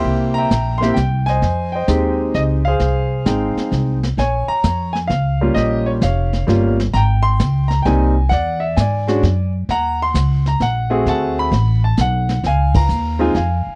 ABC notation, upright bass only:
X:1
M:3/4
L:1/8
Q:"Swing" 1/4=131
K:Fm
V:1 name="Upright bass" clef=bass
C,,2 B,,,2 C,,2 | F,,2 E,,2 D,,2 | C,,2 A,,, z C,,2 | [K:Bbm] B,,, z F,,2 D,,2 |
B,,,2 F,,,2 =G,,,2 | A,,,2 D,,2 C,,2 | =E,,2 ^G,,2 ^F,,2 | E,,2 D,,2 B,,,2 |
=D,,2 =A,,,2 _C,,2 | D,,2 E,,2 F,, z |]